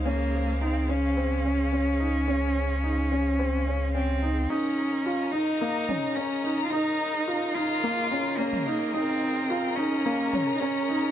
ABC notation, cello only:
X:1
M:4/4
L:1/16
Q:1/4=108
K:Ebdor
V:1 name="Cello"
B,4 C2 D8- D2- | D12 C4 | D6 E6 D3- D/2 F/2 | E6 F6 B,4 |
C6 D4- D3/2 E/2 D4 |]